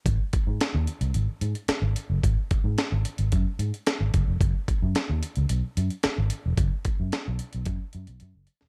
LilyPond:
<<
  \new Staff \with { instrumentName = "Fingered electric bass" } { \clef bass \time 4/4 \key ges \lydian \tempo 4 = 110 aes,,16 r8 aes,16 r16 ees,16 r16 c,16 aes,,16 r16 aes,16 r8 aes,,16 r16 ges,,16 | aes,,16 r8 aes,16 r16 aes,,16 r16 aes,,16 ges,16 r16 aes,16 r8 aes,,16 ges,,16 f,,16 | ges,,16 r8 ges,16 r16 ees,16 r16 des,16 ces,16 r16 ges,16 r8 aes,,16 r16 fes,,16 | ges,,16 r8 ges,16 r16 ces,16 r16 ces,16 ges,16 r16 ges,16 ces,16 ges,16 ges,,16 r16 fes,,16 | }
  \new DrumStaff \with { instrumentName = "Drums" } \drummode { \time 4/4 <hh bd>8 <hh bd>8 <hh sn>8 hh16 hh16 hh8 hh16 hh16 <hh sn>8 hh8 | <hh bd>8 <hh bd>8 <hh sn>8 hh16 hh16 <hh bd>8 hh16 hh16 <hh sn>8 <hh bd>8 | <hh bd>8 <hh bd>8 <hh sn>8 hh16 hh16 hh8 hh16 hh16 <hh sn>8 hh8 | <hh bd>8 <hh bd>8 <hh sn>8 hh16 hh16 <hh bd>8 hh16 hh16 hh8 hh16 sn16 | }
>>